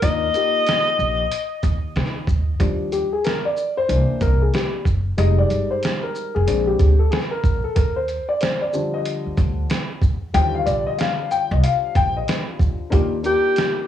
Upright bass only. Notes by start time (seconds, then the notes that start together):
0.02 D#2
0.99 A#1
1.63 D#2
1.96 D#3
2.28 D#2
2.60 D#2
3.89 C2
4.10 muted upright bass stroke
4.21 C2
4.86 F#1
5.18 F1
5.51 G1
6.36 F1
6.48 A#1
6.80 D2
7.44 A#1
7.76 D#2
9.26 muted upright bass stroke
9.38 D2
10.02 E2
10.34 D#2
10.67 A#1
11.51 C2
11.95 A#1
12.60 D#2
12.92 D#2